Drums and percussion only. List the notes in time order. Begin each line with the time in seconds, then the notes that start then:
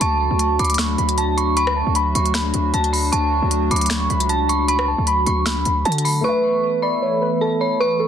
0.01 closed hi-hat
0.39 closed hi-hat
0.59 closed hi-hat
0.65 closed hi-hat
0.70 closed hi-hat
0.74 finger snap, closed hi-hat
0.79 snare
0.98 closed hi-hat
1.09 closed hi-hat
1.18 closed hi-hat
1.38 closed hi-hat
1.57 closed hi-hat
1.67 cross-stick
1.95 closed hi-hat
2.15 closed hi-hat
2.26 closed hi-hat
2.34 finger snap, snare, closed hi-hat
2.54 closed hi-hat
2.74 closed hi-hat
2.84 closed hi-hat
2.94 open hi-hat
3.13 closed hi-hat
3.51 closed hi-hat
3.71 closed hi-hat
3.76 closed hi-hat
3.81 closed hi-hat
3.86 finger snap, closed hi-hat
3.91 snare
4.10 closed hi-hat
4.20 closed hi-hat
4.29 closed hi-hat
4.49 closed hi-hat
4.68 closed hi-hat
4.79 cross-stick
5.07 closed hi-hat
5.27 closed hi-hat
5.46 finger snap, snare, closed hi-hat
5.65 closed hi-hat
5.85 closed hi-hat
5.92 closed hi-hat
5.98 closed hi-hat
6.05 open hi-hat